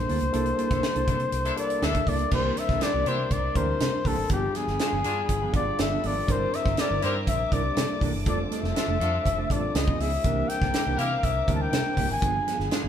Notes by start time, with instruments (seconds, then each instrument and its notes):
Already playing: tine electric piano G3 A#3 D4 E4 A4 A5, flugelhorn C5
0.09 fingered electric bass D2, clean electric guitar A#3 D4 E4 A4, open hi-hat
0.20 fingered electric bass C#2, muted clean electric guitar stroke, closed hi-hat
0.32 fingered electric bass C2, tine electric piano G3 A#3 D4 E4 A4, clean electric guitar A#3 D4 E4 A4, closed hi-hat
0.46 closed hi-hat
0.58 clean electric guitar A#3 D4 E4 A4, closed hi-hat
0.70 fingered electric bass C2, clean electric guitar A#3 E4 A4, horn section D4 E4 A4, kick, snare, closed hi-hat
0.83 muted clean electric guitar stroke, snare
0.95 fingered electric bass C2, clean electric guitar A#3 D4 E4 A4, closed hi-hat
1.08 fingered electric bass C3, horn section D4 E4 A4, muted clean electric guitar stroke, kick, closed hi-hat
1.20 muted clean electric guitar stroke, closed hi-hat
1.32 fingered electric bass C2, muted clean electric guitar stroke, closed hi-hat
1.44 horn section D4 E4 A4, muted clean electric guitar stroke, closed hi-hat
1.56 tine electric piano G3 A#3 D4 E4 A4, flugelhorn D5, closed hi-hat
1.70 muted clean electric guitar stroke, closed hi-hat
1.81 fingered electric bass D2, horn section D4 E4 A4, flugelhorn E5, snare
1.94 clean electric guitar A#3 D4 E4 A4, kick, closed hi-hat
2.07 fingered electric bass C#2, clean electric guitar A#3 D4 E4 A4, flugelhorn D5, kick, open hi-hat
2.19 muted clean electric guitar stroke, closed hi-hat
2.31 fingered electric bass C2, clean electric guitar E3 A#3 D4 G4, tine electric piano G3 C4 D4 E4 A#4, string section A#4 D5 E5 C6, flugelhorn C5, kick, crash
2.57 flugelhorn E5, muted clean electric guitar stroke, snare, closed hi-hat
2.69 fingered electric bass C2, clean electric guitar E3 A#3 D4 A4, kick, snare
2.80 horn section D4 E4 G4, flugelhorn D5, snare, closed hi-hat
2.94 fingered electric bass C2, clean electric guitar E3 A#3 D4 G4
3.05 fingered electric bass C3, clean electric guitar E3 A#3 D4 G4, horn section D4 E4 G4, flugelhorn C5, closed hi-hat
3.19 muted clean electric guitar stroke
3.31 fingered electric bass C2, flugelhorn D5, kick, closed hi-hat
3.44 muted clean electric guitar stroke
3.54 fingered electric bass D2, clean electric guitar E3 A#3 D4 G4, tine electric piano G3 C4 D4 E4 A#4, flugelhorn C5, kick, closed hi-hat
3.68 muted clean electric guitar stroke
3.80 fingered electric bass C3, snare, closed hi-hat
3.93 muted clean electric guitar stroke
4.05 fingered electric bass C2, clean electric guitar E3 A#3 D4 G4, flugelhorn A4, kick, open hi-hat
4.18 fingered electric bass G#1, muted clean electric guitar stroke
4.29 fingered electric bass G1, clean electric guitar F3 B3 D4 G#4, tine electric piano G3 B3 D4 F4 G#4, flugelhorn G4, string section G#4 F5 G5 B5, kick, closed hi-hat
4.55 clean electric guitar F3 B3 D4 G#4, flugelhorn G#4, snare, closed hi-hat
4.68 fingered electric bass G1, clean electric guitar F3 B3 D4 G#4, snare
4.79 horn section D4 F4 G#4, muted clean electric guitar stroke, snare, closed hi-hat
4.93 fingered electric bass G1, clean electric guitar F3 B3 D4 G#4
5.04 fingered electric bass G2, horn section D4 F4 G#4, muted clean electric guitar stroke, closed hi-hat
5.17 muted clean electric guitar stroke
5.29 fingered electric bass G1, muted clean electric guitar stroke, kick, closed hi-hat
5.42 clean electric guitar F3 B3 D4 G#4
5.53 fingered electric bass G#1, clean electric guitar F3 B3 D4, tine electric piano G3 B3 D4 F4 G#4, flugelhorn D5, kick, closed hi-hat
5.66 muted clean electric guitar stroke
5.78 fingered electric bass G1, tine electric piano G3 A#3 D4 F4 A4, string section A4 B5, flugelhorn E5, snare, closed hi-hat
5.84 tine electric piano B3
5.91 clean electric guitar F3 B3 D4 A4
6.03 fingered electric bass G#1, clean electric guitar F3 B3 D4 A4, flugelhorn D5, open hi-hat
6.16 muted clean electric guitar stroke
6.27 fingered electric bass G1, tine electric piano G3 C4 D4 E4 A#4, clean electric guitar G3 D4 E4 A#4, string section C5 E5 A#5 D6, kick, closed hi-hat
6.31 flugelhorn C5
6.53 flugelhorn E5, muted clean electric guitar stroke, snare, closed hi-hat
6.66 fingered electric bass G1, clean electric guitar G3 D4 E4 C5, kick, snare
6.77 horn section E4 G4 A#4, flugelhorn D5, muted clean electric guitar stroke, snare, closed hi-hat
6.90 fingered electric bass G1, clean electric guitar G3 D4 E4 A#4
7.01 fingered electric bass G2, clean electric guitar G3 D4 E4 A#4, horn section E4 G4 A#4, flugelhorn C5, closed hi-hat
7.16 muted clean electric guitar stroke
7.27 fingered electric bass A#1, flugelhorn E5, kick, closed hi-hat
7.40 muted clean electric guitar stroke
7.51 fingered electric bass C2, tine electric piano G3 C4 D4 E4 G4, clean electric guitar G3 D4 E4 A#4, flugelhorn D5, kick, closed hi-hat
7.77 fingered electric bass C3, tine electric piano G3 A#3 D4 E4 A4, string section A#3 A5, snare, closed hi-hat
7.90 muted clean electric guitar stroke
8.01 fingered electric bass C2, clean electric guitar E3 A#3 D4 A4, kick, open hi-hat
8.14 fingered electric bass F#1, muted clean electric guitar stroke
8.26 fingered electric bass F1, tine electric piano G3 C4 D4 F4 A4, clean electric guitar A3 D4 F4 A4, string section F4 C5, flugelhorn D5, kick, closed hi-hat
8.51 clean electric guitar A3 D4 F4 A4, flugelhorn E5, snare, closed hi-hat
8.63 fingered electric bass F1, clean electric guitar A3 D4 F4 A4, snare
8.74 horn section D4 F4 A4, muted clean electric guitar stroke, snare, closed hi-hat
8.88 fingered electric bass F1, clean electric guitar A3 D4 F4 A4
9.00 fingered electric bass F2, horn section D4 F4 A4, muted clean electric guitar stroke, closed hi-hat
9.13 muted clean electric guitar stroke
9.25 fingered electric bass F1, muted clean electric guitar stroke, kick, closed hi-hat
9.38 clean electric guitar A3 D4 F4 A4
9.50 fingered electric bass A1, tine electric piano G3 C4 D4 F4 A4, clean electric guitar A3 D4 F4 A4, flugelhorn D5, kick, closed hi-hat
9.63 muted clean electric guitar stroke
9.74 fingered electric bass C#2, tine electric piano G#3 C#4 D#4 F4 B4, string section C#5 B5 D#6, flugelhorn D#5, snare, closed hi-hat
9.88 clean electric guitar F3 B3 D#4 G#4, kick
9.99 fingered electric bass C#2, clean electric guitar F3 B3 D#4 G#4, flugelhorn E5, open hi-hat
10.13 muted clean electric guitar stroke
10.24 fingered electric bass C2, clean electric guitar E3 A#3 D4 G4, tine electric piano G3 C4 D4 E4 A#4, string section C5 E5 A#5 D6, kick, closed hi-hat
10.48 flugelhorn G5, muted clean electric guitar stroke, snare, closed hi-hat
10.62 fingered electric bass C2, clean electric guitar E3 A#3 D4 A4, kick, snare
10.73 horn section E4 G4 A#4, muted clean electric guitar stroke, snare, closed hi-hat
10.86 fingered electric bass C2, clean electric guitar E3 A#3 D4 G4
10.97 fingered electric bass C3, clean electric guitar E3 A#3, horn section E4 G4 A#4, flugelhorn F5, closed hi-hat
11.12 muted clean electric guitar stroke
11.23 fingered electric bass C2, flugelhorn E5, kick, closed hi-hat
11.37 muted clean electric guitar stroke
11.48 fingered electric bass D2, clean electric guitar E3 A#3 D4 G4, tine electric piano G3 C4 D4 D#4 A#4, kick, closed hi-hat
11.55 tine electric piano E4, flugelhorn A5
11.61 flugelhorn G5, muted clean electric guitar stroke
11.72 fingered electric bass C3, snare, closed hi-hat
11.85 muted clean electric guitar stroke
11.97 fingered electric bass C2, clean electric guitar E3 A#3 D4 G4, kick, open hi-hat
12.10 fingered electric bass G#1, flugelhorn G#5, muted clean electric guitar stroke
12.22 fingered electric bass G1, clean electric guitar F3 B3 D4 G#4, tine electric piano G3 B3 D4 F4 G#4, string section G#4 F5 G#5 B5, kick, closed hi-hat
12.47 clean electric guitar F3 B3 D4 G#4, snare, closed hi-hat
12.59 fingered electric bass G1, clean electric guitar F3 B3 D4 G#4, snare
12.71 horn section D4 F4 G#4, snare, closed hi-hat
12.84 fingered electric bass G1, clean electric guitar F3 B3 D4 G#4